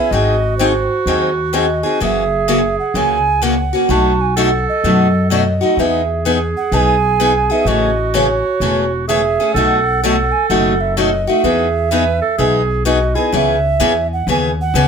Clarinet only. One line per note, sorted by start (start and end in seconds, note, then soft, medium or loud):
0.00 0.14 E4 medium
0.12 2.01 F#4 medium
2.01 3.65 G#4 medium
3.89 4.33 F#4 medium
4.36 5.57 A4 medium
5.77 7.69 G#4 medium
7.67 9.07 F#4 medium
9.08 9.52 G#4 medium
9.54 9.99 A4 loud
10.02 11.19 A4 medium
11.44 11.88 G#4 medium
11.92 12.20 B4 medium
12.22 12.37 A4 medium
12.38 12.82 G#4 medium
12.85 13.16 F#4 medium
13.15 13.32 E4 medium